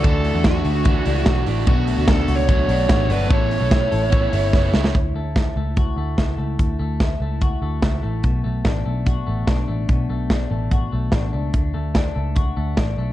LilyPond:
<<
  \new Staff \with { instrumentName = "Lead electric guitar" } { \time 4/4 \key d \major \tempo 4 = 146 a'4 fis'2~ fis'8 r8 | fis'4 \tuplet 3/2 { a'4 cis''8~ } cis''4. b'8 | cis''2.~ cis''8 r8 | r1 |
r1 | r1 | r1 | r1 | }
  \new Staff \with { instrumentName = "Overdriven electric guitar" } { \time 4/4 \key d \major <d e a d' fis'>8. <a d' fis'>4~ <a d' fis'>16 <e a d' fis'>8 <e a d' fis'>8 <e a d' fis'>8 <e a d' fis'>8 | <b, fis a d' fis'>8. <a d' fis'>4~ <a d' fis'>16 <fis a d' fis'>8 <fis a d' fis'>8 <fis a d' fis'>8 <fis a d' fis'>8 | <a b e' a' cis''>8. <e' a' cis''>4~ <e' a' cis''>16 <b e' a' cis''>8 <b e' a' cis''>8 <b e' a' cis''>8 <b e' a' cis''>8 | r1 |
r1 | r1 | r1 | r1 | }
  \new Staff \with { instrumentName = "Clean electric guitar" } { \time 4/4 \key d \major <d e a d' fis'>8 a8 d'8 fis'8 e8 d'8 fis'8 d'8 | b,8 a8 d'8 fis'8 fis8 d'8 fis'8 d'8 | a8 cis'8 e'8 a'16 b'16 cis'8 e'8 b'8 e'8 | r8 a8 e'8 a8 fis'8 a8 e'8 a8~ |
a8 a8 e'8 a8 fis'8 a8 e'8 a8 | b,8 a8 d'8 a8 fis'8 a8 d'8 a8 | b,8 a8 d'8 a8 fis'8 a8 d'8 a8 | r8 a8 d'8 a8 fis'8 a8 d'8 a8 | }
  \new Staff \with { instrumentName = "Picked electric bass" } { \clef bass \time 4/4 \key d \major d,8. e,8. d,4 cis,8 b,,8 a,,8 | b,,8. d,8. cis,4 b,,8 a,,8 g,,8 | a,,8. b,,8. a,,4 g,,8 fis,,8 cis,8 | d,8 d,4 cis,4 d,8 cis,8 cis,8 |
d,8 d,4 cis,4 d,8 cis,8 a,,8 | b,,8 b,,8 a,,8 b,,4 a,,8 b,,8 a,,8 | b,,8 b,,4 a,,4 b,,8 a,,8 cis,8 | d,8 d,4 cis,4 d,8 a,,8 b,,8 | }
  \new DrumStaff \with { instrumentName = "Drums" } \drummode { \time 4/4 <hhp bd cymr>8 hho8 <hhp bd cymr sn>8 hho8 <hhp bd cymr>8 hho8 <bd cymr sn>8 hho8 | <hhp bd cymr>8 hho8 <hhp bd cymr sn>8 hho8 <hhp bd cymr>8 hho8 <hhp bd cymr sn>8 hho8 | <hhp bd cymr>8 hho8 <hhp bd cymr sn>8 hho8 <hhp bd cymr>8 hho8 <bd sn>8 sn16 sn16 | <hh bd>4 <hh bd sn>4 <hh bd>4 <hh bd sn>4 |
<hh bd>4 <hh bd sn>4 <hh bd>4 <hh bd sn>4 | <hh bd>4 <hh bd sn>4 <hh bd>4 <hh bd sn>4 | <hh bd>4 <hh bd sn>4 <hh bd>4 <hh bd sn>4 | <hh bd>4 <hh bd sn>4 <hh bd>4 <hh bd sn>4 | }
>>